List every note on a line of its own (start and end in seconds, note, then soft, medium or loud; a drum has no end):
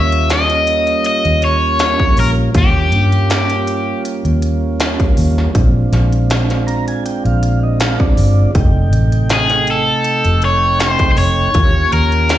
0.00 0.92 D#2 medium
0.00 2.51 G3 medium
0.00 2.51 A#3 medium
0.00 2.51 C#4 medium
0.00 2.51 F4 medium
0.00 0.29 E5 loud
0.12 closed hi-hat soft
0.30 1.05 D#5 medium
0.30 snare medium
0.30 closed hi-hat medium
0.50 closed hi-hat soft
0.67 closed hi-hat medium
0.87 closed hi-hat soft
1.05 1.44 D#5 loud
1.05 closed hi-hat medium
1.25 1.95 D#2 medium
1.25 closed hi-hat soft
1.42 2.19 C#5 medium
1.42 closed hi-hat medium
1.79 snare loud
1.79 closed hi-hat medium
2.00 kick medium
2.17 2.46 A#1 medium
2.17 2.30 A#4 medium
2.17 open hi-hat medium
2.54 2.93 D#2 loud
2.54 5.50 G3 medium
2.54 5.51 A#3 medium
2.54 5.51 C#4 medium
2.54 5.51 F4 medium
2.54 4.02 G4 medium
2.54 kick loud
2.54 closed hi-hat medium
2.92 3.92 G2 medium
2.92 closed hi-hat medium
3.12 closed hi-hat soft
3.30 snare loud
3.30 closed hi-hat medium
3.50 closed hi-hat soft
3.67 closed hi-hat medium
4.05 closed hi-hat medium
4.25 4.94 D#2 medium
4.25 closed hi-hat soft
4.42 closed hi-hat medium
4.80 snare loud
4.80 closed hi-hat medium
5.00 kick medium
5.00 closed hi-hat soft
5.17 5.46 D#2 medium
5.17 open hi-hat medium
5.38 snare soft
5.55 5.83 A#1 medium
5.55 8.51 G#3 medium
5.55 8.51 C4 medium
5.55 8.51 D4 medium
5.55 8.51 F4 medium
5.55 kick medium
5.55 closed hi-hat medium
5.92 6.92 A#1 medium
5.92 snare soft
5.92 closed hi-hat soft
6.12 closed hi-hat soft
6.30 snare loud
6.30 closed hi-hat medium
6.50 snare soft
6.50 closed hi-hat soft
6.67 6.86 A#5 medium
6.67 closed hi-hat medium
6.88 7.04 G#5 medium
6.88 closed hi-hat soft
7.06 7.24 G5 medium
7.06 closed hi-hat medium
7.25 7.94 A#1 medium
7.25 7.60 F5 medium
7.25 closed hi-hat soft
7.43 closed hi-hat medium
7.63 7.79 D#5 medium
7.80 7.99 F5 medium
7.80 snare loud
7.80 closed hi-hat medium
8.00 8.51 D5 medium
8.00 kick medium
8.17 8.46 G1 medium
8.17 open hi-hat medium
8.55 8.92 F1 loud
8.55 11.51 C3 medium
8.55 11.51 A3 medium
8.55 11.51 D#4 medium
8.55 11.51 G5 medium
8.55 kick medium
8.55 closed hi-hat medium
8.92 9.92 A1 medium
8.92 closed hi-hat medium
9.12 closed hi-hat soft
9.30 snare loud
9.30 closed hi-hat medium
9.34 9.67 G#4 medium
9.50 snare soft
9.50 closed hi-hat soft
9.67 10.45 A4 medium
9.67 closed hi-hat medium
10.04 closed hi-hat medium
10.25 10.95 F1 medium
10.25 closed hi-hat soft
10.42 10.80 C#5 medium
10.42 closed hi-hat medium
10.80 11.11 C5 medium
10.80 snare loud
10.80 closed hi-hat medium
10.99 kick medium
10.99 closed hi-hat soft
11.12 11.18 C5 medium
11.17 11.46 F1 medium
11.17 11.93 C#5 medium
11.17 open hi-hat medium
11.54 11.83 D#2 medium
11.54 12.38 A#3 medium
11.54 12.38 C#4 medium
11.54 12.38 F4 medium
11.54 12.38 G4 medium
11.54 kick medium
11.54 closed hi-hat medium
11.92 12.38 D#2 loud
11.92 12.38 A#4 medium
11.92 closed hi-hat medium
12.12 closed hi-hat soft
12.29 snare loud
12.29 closed hi-hat medium